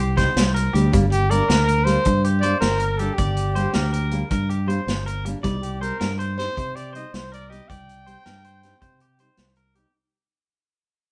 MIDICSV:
0, 0, Header, 1, 7, 480
1, 0, Start_track
1, 0, Key_signature, -2, "minor"
1, 0, Tempo, 375000
1, 1188, Time_signature, 12, 3, 24, 8
1, 14228, End_track
2, 0, Start_track
2, 0, Title_t, "Trumpet"
2, 0, Program_c, 0, 56
2, 0, Note_on_c, 0, 67, 82
2, 627, Note_off_c, 0, 67, 0
2, 1427, Note_on_c, 0, 67, 88
2, 1669, Note_on_c, 0, 70, 94
2, 1688, Note_off_c, 0, 67, 0
2, 2359, Note_on_c, 0, 72, 92
2, 2378, Note_off_c, 0, 70, 0
2, 2855, Note_off_c, 0, 72, 0
2, 3075, Note_on_c, 0, 74, 95
2, 3315, Note_off_c, 0, 74, 0
2, 3332, Note_on_c, 0, 70, 89
2, 3804, Note_on_c, 0, 69, 80
2, 3823, Note_off_c, 0, 70, 0
2, 4020, Note_on_c, 0, 67, 85
2, 4039, Note_off_c, 0, 69, 0
2, 5486, Note_off_c, 0, 67, 0
2, 7191, Note_on_c, 0, 67, 77
2, 7446, Note_on_c, 0, 70, 92
2, 7465, Note_off_c, 0, 67, 0
2, 7918, Note_off_c, 0, 70, 0
2, 8158, Note_on_c, 0, 72, 99
2, 8644, Note_on_c, 0, 74, 85
2, 8663, Note_off_c, 0, 72, 0
2, 8876, Note_off_c, 0, 74, 0
2, 8904, Note_on_c, 0, 75, 79
2, 9141, Note_on_c, 0, 72, 81
2, 9160, Note_off_c, 0, 75, 0
2, 9364, Note_off_c, 0, 72, 0
2, 9386, Note_on_c, 0, 74, 90
2, 9589, Note_on_c, 0, 75, 81
2, 9608, Note_off_c, 0, 74, 0
2, 9840, Note_on_c, 0, 79, 98
2, 9859, Note_off_c, 0, 75, 0
2, 12232, Note_off_c, 0, 79, 0
2, 14228, End_track
3, 0, Start_track
3, 0, Title_t, "Clean electric guitar"
3, 0, Program_c, 1, 27
3, 0, Note_on_c, 1, 67, 59
3, 210, Note_off_c, 1, 67, 0
3, 218, Note_on_c, 1, 72, 65
3, 679, Note_off_c, 1, 72, 0
3, 697, Note_on_c, 1, 70, 73
3, 930, Note_off_c, 1, 70, 0
3, 940, Note_on_c, 1, 67, 73
3, 1172, Note_off_c, 1, 67, 0
3, 1672, Note_on_c, 1, 74, 67
3, 1899, Note_off_c, 1, 74, 0
3, 1912, Note_on_c, 1, 70, 81
3, 2131, Note_off_c, 1, 70, 0
3, 2146, Note_on_c, 1, 70, 73
3, 2604, Note_off_c, 1, 70, 0
3, 2875, Note_on_c, 1, 67, 66
3, 3101, Note_off_c, 1, 67, 0
3, 3111, Note_on_c, 1, 72, 73
3, 3567, Note_off_c, 1, 72, 0
3, 3579, Note_on_c, 1, 70, 71
3, 3813, Note_off_c, 1, 70, 0
3, 3833, Note_on_c, 1, 67, 72
3, 4060, Note_off_c, 1, 67, 0
3, 4074, Note_on_c, 1, 74, 86
3, 4529, Note_off_c, 1, 74, 0
3, 4549, Note_on_c, 1, 72, 69
3, 4778, Note_off_c, 1, 72, 0
3, 4796, Note_on_c, 1, 70, 79
3, 5014, Note_off_c, 1, 70, 0
3, 5030, Note_on_c, 1, 70, 75
3, 5486, Note_off_c, 1, 70, 0
3, 5514, Note_on_c, 1, 70, 77
3, 5741, Note_off_c, 1, 70, 0
3, 5753, Note_on_c, 1, 67, 59
3, 5980, Note_off_c, 1, 67, 0
3, 5989, Note_on_c, 1, 72, 65
3, 6446, Note_off_c, 1, 72, 0
3, 6480, Note_on_c, 1, 70, 78
3, 6703, Note_off_c, 1, 70, 0
3, 6953, Note_on_c, 1, 74, 78
3, 7408, Note_off_c, 1, 74, 0
3, 7442, Note_on_c, 1, 72, 74
3, 7664, Note_off_c, 1, 72, 0
3, 7678, Note_on_c, 1, 70, 73
3, 7902, Note_off_c, 1, 70, 0
3, 7922, Note_on_c, 1, 72, 70
3, 8372, Note_off_c, 1, 72, 0
3, 8396, Note_on_c, 1, 72, 71
3, 8621, Note_off_c, 1, 72, 0
3, 8648, Note_on_c, 1, 67, 66
3, 8867, Note_off_c, 1, 67, 0
3, 8868, Note_on_c, 1, 72, 63
3, 9324, Note_off_c, 1, 72, 0
3, 9368, Note_on_c, 1, 70, 75
3, 9586, Note_off_c, 1, 70, 0
3, 9599, Note_on_c, 1, 67, 74
3, 9822, Note_off_c, 1, 67, 0
3, 9850, Note_on_c, 1, 74, 82
3, 10295, Note_off_c, 1, 74, 0
3, 10322, Note_on_c, 1, 72, 72
3, 10543, Note_off_c, 1, 72, 0
3, 10567, Note_on_c, 1, 70, 80
3, 10785, Note_off_c, 1, 70, 0
3, 10814, Note_on_c, 1, 72, 65
3, 11257, Note_off_c, 1, 72, 0
3, 11283, Note_on_c, 1, 72, 68
3, 11503, Note_off_c, 1, 72, 0
3, 11539, Note_on_c, 1, 67, 67
3, 11751, Note_off_c, 1, 67, 0
3, 11776, Note_on_c, 1, 72, 57
3, 12217, Note_off_c, 1, 72, 0
3, 12247, Note_on_c, 1, 70, 74
3, 12465, Note_off_c, 1, 70, 0
3, 12486, Note_on_c, 1, 67, 63
3, 12705, Note_off_c, 1, 67, 0
3, 14228, End_track
4, 0, Start_track
4, 0, Title_t, "Steel-string acoustic guitar"
4, 0, Program_c, 2, 25
4, 203, Note_on_c, 2, 55, 62
4, 213, Note_on_c, 2, 60, 72
4, 235, Note_on_c, 2, 63, 70
4, 358, Note_off_c, 2, 55, 0
4, 363, Note_off_c, 2, 60, 0
4, 375, Note_off_c, 2, 63, 0
4, 949, Note_on_c, 2, 55, 66
4, 967, Note_on_c, 2, 60, 63
4, 991, Note_on_c, 2, 63, 68
4, 1092, Note_off_c, 2, 55, 0
4, 1101, Note_off_c, 2, 60, 0
4, 1113, Note_off_c, 2, 63, 0
4, 1179, Note_on_c, 2, 55, 78
4, 1195, Note_on_c, 2, 58, 87
4, 1203, Note_on_c, 2, 62, 83
4, 1327, Note_off_c, 2, 55, 0
4, 1336, Note_off_c, 2, 58, 0
4, 1340, Note_off_c, 2, 62, 0
4, 1668, Note_on_c, 2, 55, 57
4, 1684, Note_on_c, 2, 58, 62
4, 1704, Note_on_c, 2, 62, 65
4, 1813, Note_off_c, 2, 55, 0
4, 1821, Note_off_c, 2, 58, 0
4, 1830, Note_off_c, 2, 62, 0
4, 2370, Note_on_c, 2, 55, 62
4, 2391, Note_on_c, 2, 58, 65
4, 2412, Note_on_c, 2, 62, 65
4, 2524, Note_off_c, 2, 55, 0
4, 2534, Note_off_c, 2, 58, 0
4, 2545, Note_off_c, 2, 62, 0
4, 3105, Note_on_c, 2, 55, 59
4, 3133, Note_on_c, 2, 58, 57
4, 3140, Note_on_c, 2, 62, 61
4, 3252, Note_off_c, 2, 55, 0
4, 3266, Note_off_c, 2, 58, 0
4, 3270, Note_off_c, 2, 62, 0
4, 3827, Note_on_c, 2, 55, 58
4, 3849, Note_on_c, 2, 58, 53
4, 3865, Note_on_c, 2, 62, 61
4, 3973, Note_off_c, 2, 55, 0
4, 3984, Note_off_c, 2, 58, 0
4, 3992, Note_off_c, 2, 62, 0
4, 4547, Note_on_c, 2, 55, 63
4, 4567, Note_on_c, 2, 58, 63
4, 4583, Note_on_c, 2, 62, 63
4, 4693, Note_off_c, 2, 55, 0
4, 4703, Note_off_c, 2, 58, 0
4, 4711, Note_off_c, 2, 62, 0
4, 5262, Note_on_c, 2, 55, 68
4, 5279, Note_on_c, 2, 58, 76
4, 5301, Note_on_c, 2, 62, 74
4, 5411, Note_off_c, 2, 55, 0
4, 5419, Note_off_c, 2, 58, 0
4, 5430, Note_off_c, 2, 62, 0
4, 5971, Note_on_c, 2, 55, 66
4, 5992, Note_on_c, 2, 58, 74
4, 6025, Note_on_c, 2, 62, 73
4, 6125, Note_off_c, 2, 55, 0
4, 6135, Note_off_c, 2, 58, 0
4, 6152, Note_off_c, 2, 62, 0
4, 6717, Note_on_c, 2, 55, 66
4, 6740, Note_on_c, 2, 58, 67
4, 6764, Note_on_c, 2, 62, 74
4, 6858, Note_off_c, 2, 55, 0
4, 6869, Note_off_c, 2, 58, 0
4, 6881, Note_off_c, 2, 62, 0
4, 6946, Note_on_c, 2, 55, 78
4, 6964, Note_on_c, 2, 60, 76
4, 6979, Note_on_c, 2, 63, 87
4, 7092, Note_off_c, 2, 55, 0
4, 7101, Note_off_c, 2, 60, 0
4, 7109, Note_off_c, 2, 63, 0
4, 7428, Note_on_c, 2, 55, 54
4, 7462, Note_on_c, 2, 60, 60
4, 7474, Note_on_c, 2, 63, 55
4, 7573, Note_off_c, 2, 55, 0
4, 7590, Note_off_c, 2, 60, 0
4, 7596, Note_off_c, 2, 63, 0
4, 8161, Note_on_c, 2, 55, 61
4, 8181, Note_on_c, 2, 60, 57
4, 8209, Note_on_c, 2, 63, 59
4, 8299, Note_off_c, 2, 55, 0
4, 8309, Note_off_c, 2, 60, 0
4, 8323, Note_off_c, 2, 63, 0
4, 8877, Note_on_c, 2, 55, 57
4, 8901, Note_on_c, 2, 60, 57
4, 8916, Note_on_c, 2, 63, 62
4, 9017, Note_off_c, 2, 55, 0
4, 9028, Note_off_c, 2, 60, 0
4, 9036, Note_off_c, 2, 63, 0
4, 9605, Note_on_c, 2, 55, 49
4, 9634, Note_on_c, 2, 60, 60
4, 9651, Note_on_c, 2, 63, 60
4, 9740, Note_off_c, 2, 55, 0
4, 9755, Note_off_c, 2, 60, 0
4, 9763, Note_off_c, 2, 63, 0
4, 10319, Note_on_c, 2, 55, 50
4, 10342, Note_on_c, 2, 60, 55
4, 10360, Note_on_c, 2, 63, 54
4, 10457, Note_off_c, 2, 55, 0
4, 10468, Note_off_c, 2, 60, 0
4, 10478, Note_off_c, 2, 63, 0
4, 11039, Note_on_c, 2, 55, 60
4, 11059, Note_on_c, 2, 60, 62
4, 11076, Note_on_c, 2, 63, 68
4, 11177, Note_off_c, 2, 55, 0
4, 11186, Note_off_c, 2, 60, 0
4, 11195, Note_off_c, 2, 63, 0
4, 11753, Note_on_c, 2, 55, 55
4, 11778, Note_on_c, 2, 60, 62
4, 11797, Note_on_c, 2, 63, 59
4, 11894, Note_off_c, 2, 55, 0
4, 11906, Note_off_c, 2, 60, 0
4, 11916, Note_off_c, 2, 63, 0
4, 12466, Note_on_c, 2, 55, 52
4, 12496, Note_on_c, 2, 60, 64
4, 12513, Note_on_c, 2, 63, 65
4, 12610, Note_off_c, 2, 55, 0
4, 12625, Note_off_c, 2, 60, 0
4, 12633, Note_off_c, 2, 63, 0
4, 14228, End_track
5, 0, Start_track
5, 0, Title_t, "Fingered electric bass"
5, 0, Program_c, 3, 33
5, 0, Note_on_c, 3, 36, 98
5, 345, Note_off_c, 3, 36, 0
5, 465, Note_on_c, 3, 36, 88
5, 867, Note_off_c, 3, 36, 0
5, 951, Note_on_c, 3, 38, 86
5, 1150, Note_off_c, 3, 38, 0
5, 1199, Note_on_c, 3, 31, 93
5, 1797, Note_off_c, 3, 31, 0
5, 1915, Note_on_c, 3, 38, 96
5, 2515, Note_off_c, 3, 38, 0
5, 2643, Note_on_c, 3, 43, 102
5, 3240, Note_off_c, 3, 43, 0
5, 3351, Note_on_c, 3, 31, 82
5, 3952, Note_off_c, 3, 31, 0
5, 4085, Note_on_c, 3, 31, 93
5, 4680, Note_off_c, 3, 31, 0
5, 4806, Note_on_c, 3, 38, 93
5, 5401, Note_off_c, 3, 38, 0
5, 5523, Note_on_c, 3, 43, 92
5, 6119, Note_off_c, 3, 43, 0
5, 6236, Note_on_c, 3, 31, 78
5, 6835, Note_off_c, 3, 31, 0
5, 6971, Note_on_c, 3, 36, 83
5, 7563, Note_off_c, 3, 36, 0
5, 7691, Note_on_c, 3, 43, 91
5, 8283, Note_off_c, 3, 43, 0
5, 8418, Note_on_c, 3, 48, 94
5, 9007, Note_off_c, 3, 48, 0
5, 9138, Note_on_c, 3, 36, 85
5, 9726, Note_off_c, 3, 36, 0
5, 9855, Note_on_c, 3, 36, 82
5, 10444, Note_off_c, 3, 36, 0
5, 10576, Note_on_c, 3, 43, 89
5, 11165, Note_off_c, 3, 43, 0
5, 11288, Note_on_c, 3, 48, 89
5, 11880, Note_off_c, 3, 48, 0
5, 12009, Note_on_c, 3, 36, 84
5, 12601, Note_off_c, 3, 36, 0
5, 14228, End_track
6, 0, Start_track
6, 0, Title_t, "Muted clean electric guitar strokes"
6, 1196, Note_on_c, 9, 29, 83
6, 1324, Note_off_c, 9, 29, 0
6, 2639, Note_on_c, 9, 29, 68
6, 2767, Note_off_c, 9, 29, 0
6, 6722, Note_on_c, 9, 29, 74
6, 6850, Note_off_c, 9, 29, 0
6, 14228, End_track
7, 0, Start_track
7, 0, Title_t, "Drums"
7, 225, Note_on_c, 9, 36, 66
7, 230, Note_on_c, 9, 38, 27
7, 230, Note_on_c, 9, 42, 45
7, 353, Note_off_c, 9, 36, 0
7, 358, Note_off_c, 9, 38, 0
7, 358, Note_off_c, 9, 42, 0
7, 469, Note_on_c, 9, 38, 89
7, 469, Note_on_c, 9, 42, 68
7, 597, Note_off_c, 9, 38, 0
7, 597, Note_off_c, 9, 42, 0
7, 718, Note_on_c, 9, 42, 46
7, 846, Note_off_c, 9, 42, 0
7, 962, Note_on_c, 9, 42, 45
7, 1090, Note_off_c, 9, 42, 0
7, 1192, Note_on_c, 9, 42, 63
7, 1198, Note_on_c, 9, 36, 83
7, 1320, Note_off_c, 9, 42, 0
7, 1326, Note_off_c, 9, 36, 0
7, 1433, Note_on_c, 9, 42, 47
7, 1561, Note_off_c, 9, 42, 0
7, 1676, Note_on_c, 9, 42, 47
7, 1804, Note_off_c, 9, 42, 0
7, 1916, Note_on_c, 9, 38, 91
7, 1916, Note_on_c, 9, 42, 63
7, 2044, Note_off_c, 9, 38, 0
7, 2044, Note_off_c, 9, 42, 0
7, 2155, Note_on_c, 9, 42, 50
7, 2283, Note_off_c, 9, 42, 0
7, 2391, Note_on_c, 9, 38, 25
7, 2391, Note_on_c, 9, 42, 55
7, 2519, Note_off_c, 9, 38, 0
7, 2519, Note_off_c, 9, 42, 0
7, 2623, Note_on_c, 9, 42, 67
7, 2635, Note_on_c, 9, 36, 82
7, 2751, Note_off_c, 9, 42, 0
7, 2763, Note_off_c, 9, 36, 0
7, 2874, Note_on_c, 9, 42, 46
7, 3002, Note_off_c, 9, 42, 0
7, 3107, Note_on_c, 9, 42, 45
7, 3235, Note_off_c, 9, 42, 0
7, 3348, Note_on_c, 9, 38, 89
7, 3348, Note_on_c, 9, 42, 66
7, 3476, Note_off_c, 9, 38, 0
7, 3476, Note_off_c, 9, 42, 0
7, 3580, Note_on_c, 9, 42, 47
7, 3708, Note_off_c, 9, 42, 0
7, 3828, Note_on_c, 9, 42, 46
7, 3956, Note_off_c, 9, 42, 0
7, 4070, Note_on_c, 9, 42, 62
7, 4075, Note_on_c, 9, 36, 84
7, 4198, Note_off_c, 9, 42, 0
7, 4203, Note_off_c, 9, 36, 0
7, 4308, Note_on_c, 9, 42, 45
7, 4436, Note_off_c, 9, 42, 0
7, 4555, Note_on_c, 9, 42, 44
7, 4683, Note_off_c, 9, 42, 0
7, 4780, Note_on_c, 9, 38, 84
7, 4780, Note_on_c, 9, 42, 62
7, 4908, Note_off_c, 9, 38, 0
7, 4908, Note_off_c, 9, 42, 0
7, 5037, Note_on_c, 9, 42, 49
7, 5165, Note_off_c, 9, 42, 0
7, 5265, Note_on_c, 9, 42, 45
7, 5393, Note_off_c, 9, 42, 0
7, 5511, Note_on_c, 9, 42, 66
7, 5516, Note_on_c, 9, 36, 90
7, 5639, Note_off_c, 9, 42, 0
7, 5644, Note_off_c, 9, 36, 0
7, 5762, Note_on_c, 9, 42, 43
7, 5890, Note_off_c, 9, 42, 0
7, 6012, Note_on_c, 9, 42, 45
7, 6140, Note_off_c, 9, 42, 0
7, 6248, Note_on_c, 9, 38, 83
7, 6248, Note_on_c, 9, 42, 63
7, 6376, Note_off_c, 9, 38, 0
7, 6376, Note_off_c, 9, 42, 0
7, 6495, Note_on_c, 9, 42, 45
7, 6623, Note_off_c, 9, 42, 0
7, 6727, Note_on_c, 9, 42, 53
7, 6855, Note_off_c, 9, 42, 0
7, 6965, Note_on_c, 9, 42, 62
7, 6966, Note_on_c, 9, 36, 81
7, 7093, Note_off_c, 9, 42, 0
7, 7094, Note_off_c, 9, 36, 0
7, 7207, Note_on_c, 9, 42, 48
7, 7335, Note_off_c, 9, 42, 0
7, 7457, Note_on_c, 9, 42, 47
7, 7585, Note_off_c, 9, 42, 0
7, 7687, Note_on_c, 9, 38, 83
7, 7687, Note_on_c, 9, 42, 58
7, 7815, Note_off_c, 9, 38, 0
7, 7815, Note_off_c, 9, 42, 0
7, 7935, Note_on_c, 9, 42, 43
7, 8063, Note_off_c, 9, 42, 0
7, 8184, Note_on_c, 9, 38, 25
7, 8184, Note_on_c, 9, 42, 44
7, 8312, Note_off_c, 9, 38, 0
7, 8312, Note_off_c, 9, 42, 0
7, 8414, Note_on_c, 9, 36, 84
7, 8419, Note_on_c, 9, 42, 53
7, 8542, Note_off_c, 9, 36, 0
7, 8547, Note_off_c, 9, 42, 0
7, 8658, Note_on_c, 9, 42, 42
7, 8786, Note_off_c, 9, 42, 0
7, 8896, Note_on_c, 9, 42, 42
7, 9024, Note_off_c, 9, 42, 0
7, 9139, Note_on_c, 9, 38, 82
7, 9139, Note_on_c, 9, 42, 62
7, 9267, Note_off_c, 9, 38, 0
7, 9267, Note_off_c, 9, 42, 0
7, 9387, Note_on_c, 9, 42, 44
7, 9515, Note_off_c, 9, 42, 0
7, 9628, Note_on_c, 9, 42, 43
7, 9756, Note_off_c, 9, 42, 0
7, 9853, Note_on_c, 9, 36, 85
7, 9861, Note_on_c, 9, 42, 59
7, 9981, Note_off_c, 9, 36, 0
7, 9989, Note_off_c, 9, 42, 0
7, 10100, Note_on_c, 9, 42, 45
7, 10228, Note_off_c, 9, 42, 0
7, 10333, Note_on_c, 9, 42, 47
7, 10461, Note_off_c, 9, 42, 0
7, 10569, Note_on_c, 9, 38, 82
7, 10569, Note_on_c, 9, 42, 61
7, 10697, Note_off_c, 9, 38, 0
7, 10697, Note_off_c, 9, 42, 0
7, 10809, Note_on_c, 9, 42, 47
7, 10937, Note_off_c, 9, 42, 0
7, 11049, Note_on_c, 9, 38, 23
7, 11049, Note_on_c, 9, 42, 48
7, 11177, Note_off_c, 9, 38, 0
7, 11177, Note_off_c, 9, 42, 0
7, 11285, Note_on_c, 9, 42, 59
7, 11288, Note_on_c, 9, 36, 81
7, 11413, Note_off_c, 9, 42, 0
7, 11416, Note_off_c, 9, 36, 0
7, 11522, Note_on_c, 9, 42, 41
7, 11650, Note_off_c, 9, 42, 0
7, 11758, Note_on_c, 9, 42, 47
7, 11886, Note_off_c, 9, 42, 0
7, 11997, Note_on_c, 9, 38, 76
7, 11997, Note_on_c, 9, 42, 64
7, 12125, Note_off_c, 9, 38, 0
7, 12125, Note_off_c, 9, 42, 0
7, 12232, Note_on_c, 9, 42, 40
7, 12360, Note_off_c, 9, 42, 0
7, 12485, Note_on_c, 9, 42, 41
7, 12613, Note_off_c, 9, 42, 0
7, 14228, End_track
0, 0, End_of_file